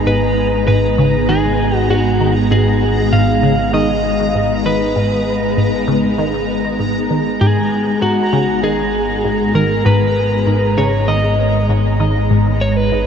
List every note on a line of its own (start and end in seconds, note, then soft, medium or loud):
0.00 7.38 G#1 medium
0.00 13.07 G#3 medium
0.00 13.07 B3 medium
0.00 13.07 D#4 medium
0.00 13.07 A#5 medium
0.06 0.21 G#2 medium
0.06 0.66 B4 medium
0.67 0.76 G#2 medium
0.67 1.30 B4 medium
0.98 1.13 C#3 loud
1.29 1.43 D#3 loud
1.29 1.77 G#4 medium
1.77 1.90 F#4 medium
1.90 2.04 G#2 medium
1.90 2.33 F#4 medium
2.20 2.29 D#3 medium
2.51 2.66 G#2 medium
2.51 3.14 G#4 medium
3.13 3.21 G#2 medium
3.13 3.73 F5 loud
3.43 3.58 C#3 loud
3.73 3.88 D#3 loud
3.73 4.68 D#5 medium
4.35 4.49 G#2 medium
4.65 4.74 D#3 medium
4.65 5.84 B4 medium
4.96 5.11 G#2 medium
5.57 5.66 G#2 medium
5.88 6.02 C#3 loud
6.18 6.33 D#3 loud
6.79 6.94 G#2 medium
7.10 7.19 D#3 medium
7.40 13.07 G#1 medium
7.40 7.56 G#2 medium
7.40 8.02 G#4 medium
8.02 8.11 G#2 medium
8.02 8.59 F#4 medium
8.33 8.47 C#3 loud
8.63 8.78 D#3 medium
8.63 9.51 G#4 medium
9.24 9.39 G#2 medium
9.55 9.64 D#3 medium
9.55 9.85 A#4 medium
9.85 10.00 G#2 medium
9.85 10.77 B4 medium
10.47 10.56 G#2 medium
10.77 10.92 C#3 loud
10.77 11.09 C#5 medium
11.08 11.23 D#3 loud
11.08 11.65 D#5 medium
11.69 11.84 G#2 medium
12.00 12.09 D#3 medium
12.30 12.45 G#2 medium
12.61 12.77 C#5 loud
12.77 13.07 B4 loud
12.92 13.01 G#2 medium